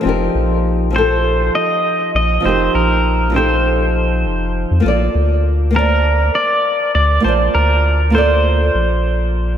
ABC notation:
X:1
M:4/4
L:1/16
Q:"Swing 16ths" 1/4=100
K:Fmix
V:1 name="Pedal steel guitar"
z6 c4 e4 e2 | c2 B4 c8 z2 | z6 B4 d4 d2 | c2 B4 c8 z2 |]
V:2 name="Nylon-string guitar"
[F,CEGB]6 [F,CEGA]8- [F,CEGA]2 | [F,CEGB]6 [F,CEGA]8- [F,CEGA]2 | [B,FAcd]6 [B,Fcda]8- [B,Fcda]2 | [B,Fcda]6 [B,FAcd]8- [B,FAcd]2 |]
V:3 name="Analog synth bass" clef=bass
F,,,2 B,,,8 z4 B,,,2 | F,,,2 B,,,8- B,,,2 F,,,3 F,, | B,,,2 D,,8 z4 D,,2 | B,,,2 D,,8 B,,,6 |]